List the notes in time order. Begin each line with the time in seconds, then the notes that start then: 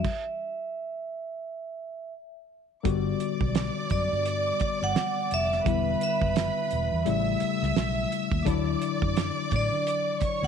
Already playing: E5
0.04 kick, crash
2.83 G1 D3 G3 B3 F#4 D5 D6, kick, closed hi-hat
3.20 closed hi-hat
3.41 B1, kick
3.55 snare, closed hi-hat
3.90 F#2 D5, kick, closed hi-hat
4.12 G2
4.26 closed hi-hat
4.60 muted fingered electric bass stroke, kick, closed hi-hat
4.82 G1 F#5, snare
4.96 snare, closed hi-hat
5.31 F1 E5, closed hi-hat
5.52 snare
5.64 E1 D3 G3 B3 E4 B4 B5, kick, closed hi-hat
6.01 E5, closed hi-hat
6.21 F#1, kick
6.36 snare, closed hi-hat
6.71 E1, closed hi-hat
6.93 E2
7.05 A1 C#3 G3 A3 E4 E5 E6, closed hi-hat
7.40 muted fingered electric bass stroke, closed hi-hat
7.62 C#2, snare
7.77 B1, snare, closed hi-hat
8.12 closed hi-hat
8.32 D#2, kick
8.45 D2 D3 F#3 D4 E4 D5 D6, kick, closed hi-hat
8.82 closed hi-hat
9.02 F#2, kick
9.17 snare, closed hi-hat
9.51 A2, kick, closed hi-hat
9.56 D5
9.72 D3
9.87 closed hi-hat
10.21 C#5 C#6, muted fingered electric bass stroke, kick, closed hi-hat
10.42 D2, snare